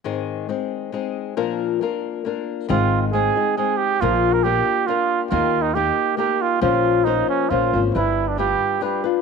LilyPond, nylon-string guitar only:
\new Staff \with { instrumentName = "Nylon-string guitar" } { \time 3/4 \key aes \major \tempo 4 = 137 <aes, ees aes c' ees' aes'>4 <aes c' ees' aes'>4 <aes c' ees' aes'>4 | <bes, f bes d' f' bes'>4 <bes d' f' bes'>4 <bes d' f' bes'>4 | <aes, ees aes c' ees' aes'>4 <aes c' ees' aes'>8 <aes c' ees' aes'>8 <aes c' ees' aes'>4 | <bes, f bes d' f' bes'>4 <bes d' f' bes'>4 <bes d' f' bes'>4 |
<ees bes ees' g' bes'>4 <bes ees' g' bes'>4 <bes ees' g' bes'>4 | <bes, f bes des' f' c''>4 <bes des' f' c''>4 <bes des' f' c''>8 <bes des' f' c''>8 | <g d' b'>4 <g d' f' b'>4 <g d' f' b'>8 <d' f' b'>8 | }